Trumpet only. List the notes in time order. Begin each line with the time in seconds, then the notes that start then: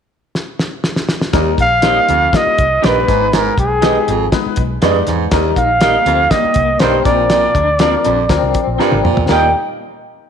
1.61 F5
2.36 D#5
2.85 B4
3.35 A#4
3.59 G#4
5.57 F5
6.31 D#5
6.80 C5
7.05 D5
9.31 G5